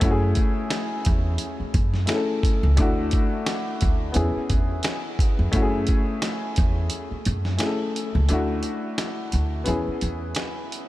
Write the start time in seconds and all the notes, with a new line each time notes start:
0.00 F#2 A3 C#4 E4, kick, closed hi-hat
0.05 F#4
0.11 G#4
0.35 kick, closed hi-hat
0.70 snare, closed hi-hat
1.05 E2, kick, closed hi-hat
1.38 closed hi-hat
1.60 muted upright bass stroke
1.74 F#2, kick, closed hi-hat
1.94 snare
2.06 A3 C#4 E4 G#4, snare, closed hi-hat
2.15 A4
2.43 kick, closed hi-hat
2.63 C#2
2.77 D2 A3 D4 E4, kick, closed hi-hat
2.81 F#4
3.11 kick, closed hi-hat
3.46 snare, closed hi-hat
3.81 D2, kick, closed hi-hat
4.12 E2 B3 C#4 E4, closed hi-hat
4.17 G#4
4.36 muted upright bass stroke
4.50 E2, kick, closed hi-hat
4.83 snare, closed hi-hat
5.19 kick, closed hi-hat
5.39 F2
5.52 F#2 A3 C#4 E4, kick, closed hi-hat
5.56 F#4
5.62 G#4
5.87 kick, closed hi-hat
6.22 snare, closed hi-hat
6.56 E2, kick, closed hi-hat
6.90 closed hi-hat
7.11 muted upright bass stroke
7.25 F#2, closed hi-hat
7.45 snare
7.58 A3 C#4 E4 G#4, snare, closed hi-hat
7.66 A4
7.96 closed hi-hat
8.15 C#2
8.29 D2 A3 D4 E4, closed hi-hat
8.33 F#4
8.63 closed hi-hat
8.98 snare, closed hi-hat
9.32 D2, closed hi-hat
9.64 E2 B3 C#4 E4, closed hi-hat
9.68 G#4
9.87 muted upright bass stroke
10.01 E2, closed hi-hat
10.35 snare, closed hi-hat
10.72 closed hi-hat